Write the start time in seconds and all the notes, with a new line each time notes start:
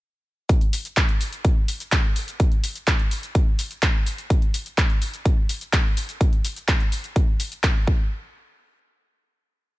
0.49 kick, closed hi-hat, shaker
0.61 closed hi-hat
0.73 open hi-hat, shaker
0.85 closed hi-hat, shaker
0.97 kick, clap, closed hi-hat, shaker
1.09 closed hi-hat
1.21 open hi-hat, shaker
1.33 closed hi-hat, shaker
1.45 kick, closed hi-hat, shaker
1.68 open hi-hat, shaker
1.80 closed hi-hat, shaker
1.92 kick, clap, closed hi-hat, shaker
2.16 open hi-hat, shaker
2.28 closed hi-hat, shaker
2.40 kick, closed hi-hat, shaker
2.52 closed hi-hat
2.64 open hi-hat, shaker
2.76 closed hi-hat, shaker
2.87 kick, clap, closed hi-hat, shaker
2.99 closed hi-hat
3.11 open hi-hat, shaker
3.23 closed hi-hat, shaker
3.35 kick, closed hi-hat, shaker
3.59 open hi-hat, shaker
3.71 closed hi-hat, shaker
3.82 kick, clap, closed hi-hat, shaker
4.06 open hi-hat, shaker
4.18 closed hi-hat, shaker
4.30 kick, closed hi-hat, shaker
4.42 closed hi-hat
4.54 open hi-hat, shaker
4.66 closed hi-hat, shaker
4.78 kick, clap, closed hi-hat, shaker
4.90 closed hi-hat
5.02 open hi-hat, shaker
5.14 closed hi-hat, shaker
5.25 kick, closed hi-hat, shaker
5.49 open hi-hat, shaker
5.61 closed hi-hat, shaker
5.73 kick, clap, closed hi-hat, shaker
5.97 open hi-hat, shaker
6.09 closed hi-hat, shaker
6.21 kick, closed hi-hat, shaker
6.33 closed hi-hat
6.45 open hi-hat, shaker
6.56 closed hi-hat, shaker
6.68 kick, clap, closed hi-hat, shaker
6.80 closed hi-hat
6.92 open hi-hat, shaker
7.04 closed hi-hat, shaker
7.16 kick, closed hi-hat, shaker
7.40 open hi-hat, shaker
7.52 closed hi-hat, shaker
7.63 kick, clap, closed hi-hat, shaker
7.87 kick